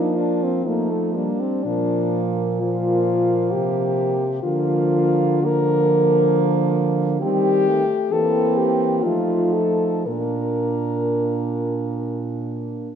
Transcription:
french horn
Already playing: F3 A#3 D4 D#4
0.15 D4 F4
0.44 C4
0.65 F3 A3 A#3 D#4
0.91 A3
1.13 G3 A#3 D4
1.40 C4
1.63 A#2 F3 D4
1.67 A#3
2.60 F3 A#3 F4
3.51 C3 G4
4.43 D3 F3 A#3 F4
5.43 F3 A#3 A#4
7.20 D#3 G3 C4 G4
7.68 A3
8.11 E3 A#3 C4 A4
8.58 G4
9.02 F3 A3 D#4 F4
9.53 A4
10.06 A#2 A#3 D4 A#4

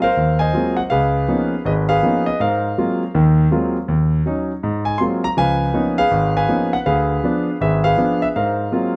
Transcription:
grand piano
Already playing: D#5
0.02 A#4 C5 F5
0.17 D#2
0.39 C5 D#5 G#5
0.53 F#3 G#3 A#3 C4 F4
0.77 F#5
0.90 C#2 G#4 B4 F5
1.28 F3 A#3 B3 C#4 D#4
1.65 G#1 G#4 B4 D#5
1.89 G#4 B4 F5
2.03 F3 A#3 B3 C#4 D#4
2.26 D#5
2.40 G#2 A#4 C5 F5
2.78 F#3 G#3 A#3 C4 F4
3.15 D#2 D#3
3.51 F#3 G#3 A#3 C4 F4
3.88 D#2
4.26 F#3 C#4 D#4
4.63 G#2
4.85 G#5
4.98 F#3 G#3 A#3 C4 F4 C6
5.24 A#5
5.37 C#2 F3 B4 F5 G#5
5.74 F3 A#3 B3 C#4 D#4
5.98 G#4 B4 F5
6.11 G#1
6.37 B4 F5 G#5
6.49 F3 A#3 B3 C#4 D#4
6.73 F#5
6.86 D2 G#4 B4 F5
7.24 F3 B3 D4
7.61 G#1 G#4 B4 E5
7.84 G#4 B4 F5
7.98 F3 B3 D4
8.22 E5
8.36 G#2 A#4 C5 F5
8.72 F#3 G#3 A#3 C4 F4

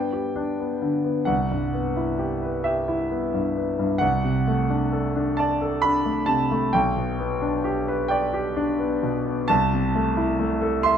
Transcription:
grand piano
Already playing: G2 B3 G5
0.13 G4
0.36 D4
0.60 B3
0.82 D3
1.04 B3
1.25 C2 F#5
1.51 G2
1.73 B3
1.97 E4
2.18 G4
2.43 B4
2.64 G4 E5
2.88 E4
3.10 B3
3.34 G2
3.56 B3
3.79 G2
3.98 C2 F#5
4.24 C3
4.47 A3
4.70 D4
4.92 A4
5.16 D4
5.37 D5 A5
5.61 A4
5.82 D4 B5
6.06 A3
6.26 C3 A5
6.51 A3
6.73 B1 G5
6.96 B2
7.19 B3
7.41 D4
7.64 G4
7.88 B4
8.08 D5 G5
8.33 G4
8.56 D4
8.79 B3
9.02 B2
9.26 B3
9.48 C2 A5
9.73 C3
9.95 A3
10.17 E4
10.39 A3
10.62 A4
10.83 E5 C6

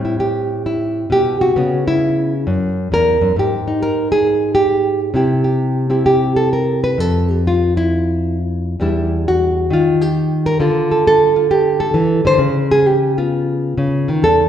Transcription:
nylon-string guitar
Already playing: A2 G3 C4
0.05 E4
0.20 G4
0.66 E4
1.10 B2 G4
1.41 C3 F#4
1.56 C#3 B3 C#4
1.88 E4
2.47 F#2
2.92 E2 A#4
3.21 F#2
3.36 G#2 G4
3.68 D#4
3.83 A#4
4.12 G#4
4.55 G4
5.14 C3 C4 E4 G4
5.44 G4
5.90 C4 E4 G4
6.06 G4
6.36 A4
6.53 A#4
6.84 B4
6.98 F2 A4
7.31 G4
7.47 F4
7.77 E4
8.80 E2 G3 D4 E4
9.28 F#4
9.70 D#3 F4
10.02 G4
10.46 A#4
10.60 D3 F4 A4
10.91 A4
11.07 A4
11.36 F4
11.51 G4
11.80 A4
11.94 E3
12.25 D3 C5
12.38 C#3
12.71 G#4
12.87 G4
13.18 B3 F4
13.77 C#3
14.08 D#3
14.22 E2 A4

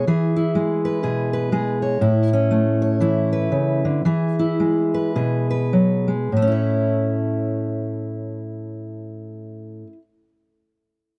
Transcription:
steel-string acoustic guitar
Already playing: E4
0.07 E3 G#4
0.36 E4
0.55 G#3
0.85 B4
1.03 B2 G#4
1.33 B4
1.52 G#3 G#4
1.82 C#5
2.01 A2 E4
2.33 C#4
2.51 A3
2.82 C#5
3.00 E3 E4
3.33 B4
3.52 C#3
3.85 D3
4.05 E3 G#4
4.39 E4
4.60 G#3
4.94 B4
5.15 B2 G#4
5.50 B4
5.73 F#3
6.08 G#3
6.32 A2
6.37 A3
6.42 C#4
6.48 E4
6.52 C#5

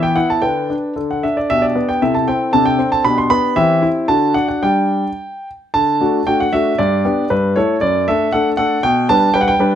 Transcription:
grand piano
Already playing: E3 B3 B4
0.03 G5
0.16 E4 F#5
0.30 A5
0.42 D3 D4 B4 G5
0.70 D4
0.96 D3 D4 A4
1.11 F#5
1.23 D4 E5
1.37 D5
1.50 B2 D4 G4 E5
1.62 D5
1.75 B3
1.89 G5
2.02 C3 E4 A4 E5
2.15 A5
2.28 C4 G5
2.53 C3 D4 A4 A5
2.66 G5
2.79 C4
2.92 A5
3.05 B2 D4 G4 B5
3.18 C6
3.30 B3 B5
3.56 E3 C4 G4 E5
3.82 E4
4.08 D3 D4 F#4 A5
4.34 D4 F#5
4.48 F#5
4.63 G3 D4 G4 G5
5.74 D3 A5
6.00 A3 D4 F#4
6.27 A3 D4 F#4 G5
6.40 F#5
6.53 A3 D4 F#4 E5
6.78 G2 D5
7.05 B3 D4 G4
7.30 G2 B4
7.56 A3 E4 A4 C#5
7.81 F#2 D5
8.08 A3 D4 A4 E5
8.32 A3 D4 A4 F#5
8.57 A3 D4 A4 F#5
8.83 B2 G5
9.09 G3 D4 B4 A5
9.34 G3 D4 B4 G5
9.41 F#5
9.48 G5
9.59 G3 D4 B4

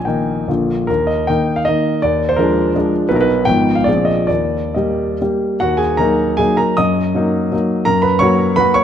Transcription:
grand piano
Already playing: A#1
0.00 G#5
0.05 D#3 A#3 D#4 G5
0.48 A#1 D3 A#3 F4
0.87 D#2 A#4
1.07 D#5
1.27 D#3 A#3 D#4 G5
1.56 F5
1.65 D#3 A#3 D#4 D#5
2.02 D#2 D5
2.29 C5
2.36 F3 G#3 D4 A#4
2.75 F3 G#3 D4
3.09 B1 F#3 B3 D#4 B4
3.16 A#4
3.21 B4
3.45 G#1 F3 B3 D#4 G5
3.75 F5
3.84 A#1 F3 C4 G#4 D5
4.05 D#5
4.27 D#2 D5
4.74 G3 A#3 G4 D#5
5.22 G3 A#3 G4
5.60 D#2 F#4 F#5
5.77 G#4 G#5
5.97 F#3 A#3 D#4 A#4 A#5
6.37 F#3 A#3 D#4 G#4 G#5
6.57 A#4 A#5
6.77 F#2 D#5 D#6
7.15 F#3 A#3 D#4
7.52 F#3 A#3 D#4
7.85 F#2 A#4 A#5
8.02 B4 B5
8.19 F#3 A#3 F#4 C#5 C#6
8.56 F#3 A#3 F#4 B4 B5
8.74 C#5 C#6

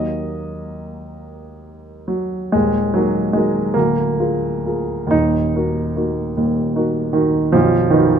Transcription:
grand piano
Already playing: D#2 F#3 A#3 D#4 D#5
2.08 F#3
2.52 D#1 D#2 G#3
2.94 F#3 D#4 F#4 A#4
3.33 G#3 D#4 F#4 A#4
3.74 D1 D2 A#3
4.20 F4 G#4 A#4
4.66 F4 G#4 A#4
5.07 D#2 D#4
5.12 D#1
5.56 D#4 F#4 A#4
5.96 D#4 F#4 A#4
6.37 D#1 D#2
6.76 D#4 F#4 A#4
7.13 D#3 D#4 F#4 A#4
7.52 B0 B1 F3
7.90 D#3 D#4 F#4 B4

